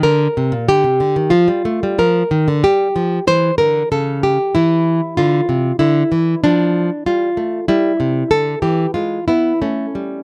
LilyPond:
\new Staff \with { instrumentName = "Nylon-string guitar" } { \clef bass \time 4/4 \key bes \major \tempo 4 = 94 << { bes'4 g'4 f'4 bes'4 | \key d \minor g'4 c''8 bes'8 a'8 g'8 e'4 | f'4 e'4 d'4 f'4 | e'4 a'8 g'8 eis'8 e'8 cis'4 | } \\ { d8 c16 bes,16 d16 c16 d16 ees16 f16 g16 a16 g16 f8 ees16 d16 | g8 f8 e8 d8 cis4 e4 | d8 c8 d8 e8 f4 g8 a8 | g8 c8 d8 e8 gis8 b8 a8 g8 | } >> }